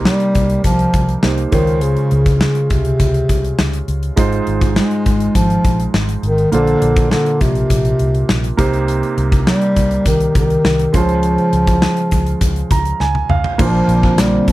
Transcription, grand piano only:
Already playing: C3 A#3 D#4 G4 C5
1.23 A#3 D#4 G4 C5
1.51 C#3 G#3 F4 C5 C#5
4.16 G#2 G#3 D#4 F4 C5
6.52 A#2 A#3 D4 F4 C5
8.57 C3 A#3 D#4 G4 C5
10.93 C#3 G#3 C#4 F4 C5
12.71 A#5
13.00 G#5
13.30 F5
13.58 A#2 A#3 D4 F4 C5

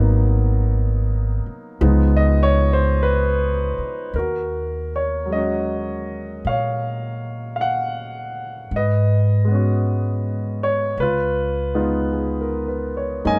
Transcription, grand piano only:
Already playing: F#3 A#3 B3 D#4
1.81 F3 G#3 B3 D#4
2.17 D#5
2.43 C#5
2.73 C5
3.03 B4
4.16 F#4 A#4
4.96 C#5
5.26 F#3
5.30 G#3 C#4 D#5
5.37 F#4
6.47 C#5 F5
7.56 F5
7.61 F#5
8.76 B4 D#5
9.45 G#3 B3
9.52 C#4 F#4
10.63 C#5
11.00 F4 B4
11.74 G#3 B3 D#4 F4
12.12 G#4
12.41 A#4
12.68 B4
12.97 C#5
13.24 G#3 A#3 C#4 D#4 D#5 G#5

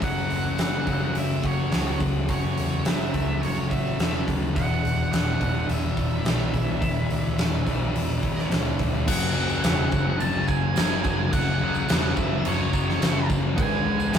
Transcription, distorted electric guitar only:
0.01 F#2 C#3 F#3
0.86 F#2 C#3 F#3
1.71 F#2 C#3 F#3
2.28 F#2 C#3 F#3
3.13 F#2 C#3 F#3
3.97 F#2 C#3 F#3
4.54 E2 B2 E3
5.40 E2 B2 E3
6.25 E2 B2 E3
6.81 E2 B2 E3
7.66 E2 B2 E3
8.49 E2 B2 E3
9.06 F#2 C#3 F#3
9.34 C#3 F#3
9.62 F#2 C#3 F#3
9.91 C#3 F#3
10.19 F#2 C#3 F#3
10.47 C#3 F#3
10.75 F#2 C#3 F#3
11.04 C#3 F#3
11.31 F#2 C#3 F#3
11.60 C#3 F#3
11.87 F#2 C#3 F#3
12.15 C#3 F#3
12.43 F#2 C#3 F#3
12.71 C#3 F#3
13.00 F#2 C#3 F#3
13.28 C#3 F#3
13.57 G#2 D#3 G#3
13.86 D#3 G#3
14.14 G#2 D#3

